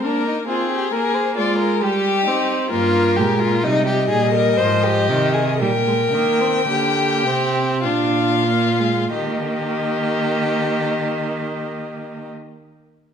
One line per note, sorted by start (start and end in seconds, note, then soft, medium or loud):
0.03 0.47 A#3 medium
0.03 0.26 D4 medium
0.03 0.47 A#4 medium
0.28 0.36 D#4 medium
0.48 0.92 C4 medium
0.48 0.70 F4 medium
0.48 0.94 G#4 medium
0.72 0.93 G4 medium
0.92 1.39 A#3 medium
0.92 1.37 G#4 medium
0.92 1.16 A#4 loud
1.15 1.37 C5 medium
1.38 1.84 G#3 medium
1.38 1.81 F4 medium
1.38 1.59 D5 medium
1.59 1.83 A#4 medium
1.82 2.29 G3 medium
1.82 2.70 G4 loud
1.82 2.25 G4 medium
2.26 2.71 C4 medium
2.26 2.70 D#4 medium
2.71 3.20 G2 medium
2.71 3.20 A#3 medium
2.71 3.18 F4 loud
2.71 3.66 A#4 medium
3.16 3.66 A#2 medium
3.16 3.64 G#3 medium
3.16 3.41 G4 medium
3.40 3.65 F4 medium
3.63 4.11 C3 medium
3.63 4.62 G3 medium
3.63 3.86 D#4 loud
3.63 5.62 D#5 medium
3.86 4.09 G4 medium
4.10 4.59 A#2 medium
4.10 4.33 G#4 medium
4.34 4.59 A#4 medium
4.58 5.11 G#2 medium
4.58 5.09 F3 medium
4.58 4.85 C5 medium
4.84 5.35 G4 loud
5.09 5.62 C3 medium
5.09 5.59 D#3 medium
5.33 5.59 G#4 medium
5.60 6.15 A#2 medium
5.60 5.69 G3 medium
5.60 6.65 A#4 medium
5.60 7.83 G5 loud
5.86 5.94 G#3 medium
6.13 6.68 D#3 medium
6.13 6.42 A#3 medium
6.40 6.68 C4 medium
6.68 7.27 D3 medium
6.68 7.27 A#3 medium
6.68 7.82 G4 loud
7.25 7.86 C3 medium
7.25 7.86 C4 medium
7.83 9.13 A#2 medium
7.83 8.46 D4 medium
7.83 9.10 F4 medium
7.83 9.10 F5 medium
8.47 8.81 A#3 medium
8.80 9.12 G#3 medium
9.13 12.29 D#3 medium
9.13 12.28 A#3 medium
9.13 12.29 G4 medium
9.13 12.29 D#5 medium